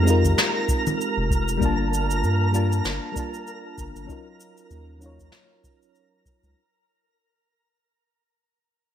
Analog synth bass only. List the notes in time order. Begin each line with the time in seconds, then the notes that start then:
Already playing: F2
1.17 F1
1.61 G1
2.23 G2
2.85 G1
3.78 G1
3.95 G1
4.71 D#2
6.43 C#2